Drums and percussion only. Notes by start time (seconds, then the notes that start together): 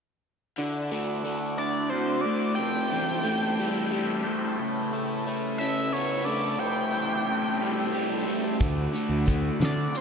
8.60 kick, closed hi-hat, tambourine
8.94 closed hi-hat, tambourine
9.26 kick, closed hi-hat, tambourine
9.61 snare, closed hi-hat
9.77 tambourine
9.94 closed hi-hat, tambourine